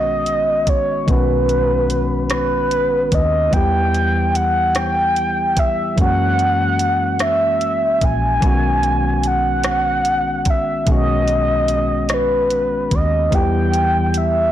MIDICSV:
0, 0, Header, 1, 5, 480
1, 0, Start_track
1, 0, Key_signature, 5, "major"
1, 0, Tempo, 816327
1, 633, Time_signature, 6, 3, 24, 8
1, 8537, End_track
2, 0, Start_track
2, 0, Title_t, "Soft synth lead"
2, 0, Program_c, 0, 80
2, 0, Note_on_c, 0, 75, 99
2, 407, Note_on_c, 0, 73, 90
2, 415, Note_off_c, 0, 75, 0
2, 651, Note_on_c, 0, 71, 101
2, 660, Note_off_c, 0, 73, 0
2, 1362, Note_off_c, 0, 71, 0
2, 1364, Note_on_c, 0, 71, 95
2, 1847, Note_on_c, 0, 75, 88
2, 1856, Note_off_c, 0, 71, 0
2, 2076, Note_on_c, 0, 79, 102
2, 2085, Note_off_c, 0, 75, 0
2, 2563, Note_on_c, 0, 78, 94
2, 2572, Note_off_c, 0, 79, 0
2, 2805, Note_on_c, 0, 79, 106
2, 2813, Note_off_c, 0, 78, 0
2, 3287, Note_on_c, 0, 76, 86
2, 3296, Note_off_c, 0, 79, 0
2, 3520, Note_off_c, 0, 76, 0
2, 3531, Note_on_c, 0, 78, 106
2, 4245, Note_on_c, 0, 76, 93
2, 4253, Note_off_c, 0, 78, 0
2, 4731, Note_on_c, 0, 80, 104
2, 4740, Note_off_c, 0, 76, 0
2, 5453, Note_on_c, 0, 78, 109
2, 5462, Note_off_c, 0, 80, 0
2, 6174, Note_on_c, 0, 76, 85
2, 6182, Note_off_c, 0, 78, 0
2, 6403, Note_off_c, 0, 76, 0
2, 6414, Note_on_c, 0, 75, 106
2, 7136, Note_on_c, 0, 71, 87
2, 7145, Note_off_c, 0, 75, 0
2, 7612, Note_on_c, 0, 75, 81
2, 7621, Note_off_c, 0, 71, 0
2, 7847, Note_on_c, 0, 79, 100
2, 7856, Note_off_c, 0, 75, 0
2, 8334, Note_on_c, 0, 76, 101
2, 8343, Note_off_c, 0, 79, 0
2, 8537, Note_off_c, 0, 76, 0
2, 8537, End_track
3, 0, Start_track
3, 0, Title_t, "Tine electric piano"
3, 0, Program_c, 1, 4
3, 0, Control_c, 1, 64, 127
3, 0, Note_on_c, 1, 51, 56
3, 0, Note_on_c, 1, 56, 50
3, 0, Note_on_c, 1, 59, 52
3, 0, Note_on_c, 1, 61, 51
3, 0, Note_on_c, 1, 66, 62
3, 604, Note_off_c, 1, 51, 0
3, 609, Note_off_c, 1, 56, 0
3, 612, Note_off_c, 1, 59, 0
3, 618, Note_off_c, 1, 61, 0
3, 621, Note_off_c, 1, 66, 0
3, 626, Note_on_c, 1, 51, 59
3, 634, Note_on_c, 1, 56, 51
3, 644, Note_on_c, 1, 59, 53
3, 654, Note_on_c, 1, 61, 51
3, 660, Note_on_c, 1, 66, 61
3, 2046, Note_off_c, 1, 51, 0
3, 2050, Note_off_c, 1, 56, 0
3, 2055, Note_off_c, 1, 59, 0
3, 2060, Note_off_c, 1, 61, 0
3, 2062, Note_on_c, 1, 52, 59
3, 2063, Note_off_c, 1, 66, 0
3, 2071, Note_on_c, 1, 55, 54
3, 2079, Note_on_c, 1, 59, 52
3, 2081, Control_c, 1, 64, 0
3, 2087, Note_on_c, 1, 64, 53
3, 2096, Note_on_c, 1, 67, 63
3, 2169, Control_c, 1, 64, 127
3, 3484, Note_off_c, 1, 52, 0
3, 3488, Note_off_c, 1, 55, 0
3, 3492, Note_off_c, 1, 59, 0
3, 3496, Note_off_c, 1, 64, 0
3, 3501, Note_off_c, 1, 67, 0
3, 3504, Note_on_c, 1, 52, 58
3, 3512, Note_on_c, 1, 56, 49
3, 3520, Control_c, 1, 64, 0
3, 3521, Note_on_c, 1, 58, 51
3, 3528, Note_on_c, 1, 61, 55
3, 3536, Note_on_c, 1, 66, 62
3, 3607, Control_c, 1, 64, 127
3, 4925, Note_off_c, 1, 52, 0
3, 4929, Note_off_c, 1, 56, 0
3, 4933, Note_off_c, 1, 58, 0
3, 4937, Note_off_c, 1, 61, 0
3, 4941, Note_off_c, 1, 66, 0
3, 4941, Note_on_c, 1, 51, 55
3, 4953, Note_on_c, 1, 56, 53
3, 4960, Control_c, 1, 64, 0
3, 4961, Note_on_c, 1, 59, 49
3, 4967, Note_on_c, 1, 61, 51
3, 4978, Note_on_c, 1, 66, 63
3, 5056, Control_c, 1, 64, 127
3, 6363, Note_off_c, 1, 51, 0
3, 6369, Note_off_c, 1, 56, 0
3, 6373, Note_off_c, 1, 59, 0
3, 6376, Note_off_c, 1, 61, 0
3, 6382, Note_off_c, 1, 66, 0
3, 6385, Note_on_c, 1, 51, 59
3, 6396, Note_on_c, 1, 56, 53
3, 6403, Note_on_c, 1, 59, 51
3, 6414, Note_on_c, 1, 61, 53
3, 6419, Note_on_c, 1, 66, 65
3, 7805, Note_off_c, 1, 51, 0
3, 7811, Note_off_c, 1, 56, 0
3, 7814, Note_off_c, 1, 59, 0
3, 7820, Note_off_c, 1, 61, 0
3, 7821, Note_on_c, 1, 52, 59
3, 7822, Note_off_c, 1, 66, 0
3, 7827, Note_on_c, 1, 55, 54
3, 7837, Note_on_c, 1, 59, 53
3, 7840, Control_c, 1, 64, 0
3, 7845, Note_on_c, 1, 64, 52
3, 7853, Note_on_c, 1, 67, 62
3, 7932, Control_c, 1, 64, 127
3, 8537, Note_off_c, 1, 52, 0
3, 8537, Note_off_c, 1, 55, 0
3, 8537, Note_off_c, 1, 59, 0
3, 8537, Note_off_c, 1, 64, 0
3, 8537, Note_off_c, 1, 67, 0
3, 8537, End_track
4, 0, Start_track
4, 0, Title_t, "Fingered electric bass"
4, 0, Program_c, 2, 33
4, 0, Note_on_c, 2, 35, 82
4, 611, Note_off_c, 2, 35, 0
4, 636, Note_on_c, 2, 35, 87
4, 1811, Note_off_c, 2, 35, 0
4, 1837, Note_on_c, 2, 39, 73
4, 2051, Note_off_c, 2, 39, 0
4, 2077, Note_on_c, 2, 40, 93
4, 3491, Note_off_c, 2, 40, 0
4, 3517, Note_on_c, 2, 42, 85
4, 4691, Note_off_c, 2, 42, 0
4, 4717, Note_on_c, 2, 34, 66
4, 4931, Note_off_c, 2, 34, 0
4, 4955, Note_on_c, 2, 35, 89
4, 6370, Note_off_c, 2, 35, 0
4, 6393, Note_on_c, 2, 35, 85
4, 7569, Note_off_c, 2, 35, 0
4, 7597, Note_on_c, 2, 39, 73
4, 7811, Note_off_c, 2, 39, 0
4, 7836, Note_on_c, 2, 40, 90
4, 8537, Note_off_c, 2, 40, 0
4, 8537, End_track
5, 0, Start_track
5, 0, Title_t, "Drums"
5, 154, Note_on_c, 9, 42, 50
5, 213, Note_off_c, 9, 42, 0
5, 393, Note_on_c, 9, 42, 72
5, 394, Note_on_c, 9, 36, 77
5, 452, Note_off_c, 9, 36, 0
5, 452, Note_off_c, 9, 42, 0
5, 634, Note_on_c, 9, 36, 91
5, 637, Note_on_c, 9, 42, 58
5, 693, Note_off_c, 9, 36, 0
5, 695, Note_off_c, 9, 42, 0
5, 877, Note_on_c, 9, 42, 42
5, 936, Note_off_c, 9, 42, 0
5, 1116, Note_on_c, 9, 42, 63
5, 1175, Note_off_c, 9, 42, 0
5, 1350, Note_on_c, 9, 42, 59
5, 1356, Note_on_c, 9, 37, 101
5, 1409, Note_off_c, 9, 42, 0
5, 1414, Note_off_c, 9, 37, 0
5, 1595, Note_on_c, 9, 42, 49
5, 1654, Note_off_c, 9, 42, 0
5, 1834, Note_on_c, 9, 36, 76
5, 1834, Note_on_c, 9, 42, 73
5, 1892, Note_off_c, 9, 42, 0
5, 1893, Note_off_c, 9, 36, 0
5, 2074, Note_on_c, 9, 36, 91
5, 2075, Note_on_c, 9, 42, 65
5, 2133, Note_off_c, 9, 36, 0
5, 2133, Note_off_c, 9, 42, 0
5, 2319, Note_on_c, 9, 42, 42
5, 2378, Note_off_c, 9, 42, 0
5, 2559, Note_on_c, 9, 42, 65
5, 2618, Note_off_c, 9, 42, 0
5, 2792, Note_on_c, 9, 42, 58
5, 2797, Note_on_c, 9, 37, 102
5, 2851, Note_off_c, 9, 42, 0
5, 2856, Note_off_c, 9, 37, 0
5, 3036, Note_on_c, 9, 42, 47
5, 3095, Note_off_c, 9, 42, 0
5, 3273, Note_on_c, 9, 42, 77
5, 3274, Note_on_c, 9, 36, 84
5, 3332, Note_off_c, 9, 42, 0
5, 3333, Note_off_c, 9, 36, 0
5, 3514, Note_on_c, 9, 36, 94
5, 3515, Note_on_c, 9, 42, 59
5, 3573, Note_off_c, 9, 36, 0
5, 3574, Note_off_c, 9, 42, 0
5, 3758, Note_on_c, 9, 42, 39
5, 3816, Note_off_c, 9, 42, 0
5, 3995, Note_on_c, 9, 42, 68
5, 4053, Note_off_c, 9, 42, 0
5, 4230, Note_on_c, 9, 42, 54
5, 4235, Note_on_c, 9, 37, 97
5, 4289, Note_off_c, 9, 42, 0
5, 4294, Note_off_c, 9, 37, 0
5, 4475, Note_on_c, 9, 42, 49
5, 4534, Note_off_c, 9, 42, 0
5, 4712, Note_on_c, 9, 42, 73
5, 4713, Note_on_c, 9, 36, 77
5, 4771, Note_off_c, 9, 42, 0
5, 4772, Note_off_c, 9, 36, 0
5, 4952, Note_on_c, 9, 36, 90
5, 4953, Note_on_c, 9, 42, 61
5, 5011, Note_off_c, 9, 36, 0
5, 5011, Note_off_c, 9, 42, 0
5, 5193, Note_on_c, 9, 42, 42
5, 5252, Note_off_c, 9, 42, 0
5, 5430, Note_on_c, 9, 42, 61
5, 5489, Note_off_c, 9, 42, 0
5, 5666, Note_on_c, 9, 42, 60
5, 5671, Note_on_c, 9, 37, 105
5, 5724, Note_off_c, 9, 42, 0
5, 5730, Note_off_c, 9, 37, 0
5, 5909, Note_on_c, 9, 42, 50
5, 5967, Note_off_c, 9, 42, 0
5, 6146, Note_on_c, 9, 42, 71
5, 6150, Note_on_c, 9, 36, 81
5, 6205, Note_off_c, 9, 42, 0
5, 6209, Note_off_c, 9, 36, 0
5, 6389, Note_on_c, 9, 42, 64
5, 6390, Note_on_c, 9, 36, 95
5, 6448, Note_off_c, 9, 42, 0
5, 6449, Note_off_c, 9, 36, 0
5, 6630, Note_on_c, 9, 42, 43
5, 6689, Note_off_c, 9, 42, 0
5, 6870, Note_on_c, 9, 42, 68
5, 6928, Note_off_c, 9, 42, 0
5, 7108, Note_on_c, 9, 42, 57
5, 7113, Note_on_c, 9, 37, 96
5, 7167, Note_off_c, 9, 42, 0
5, 7172, Note_off_c, 9, 37, 0
5, 7353, Note_on_c, 9, 42, 50
5, 7411, Note_off_c, 9, 42, 0
5, 7593, Note_on_c, 9, 36, 78
5, 7593, Note_on_c, 9, 42, 76
5, 7652, Note_off_c, 9, 36, 0
5, 7652, Note_off_c, 9, 42, 0
5, 7833, Note_on_c, 9, 36, 95
5, 7834, Note_on_c, 9, 42, 61
5, 7892, Note_off_c, 9, 36, 0
5, 7893, Note_off_c, 9, 42, 0
5, 8076, Note_on_c, 9, 42, 45
5, 8135, Note_off_c, 9, 42, 0
5, 8315, Note_on_c, 9, 42, 64
5, 8374, Note_off_c, 9, 42, 0
5, 8537, End_track
0, 0, End_of_file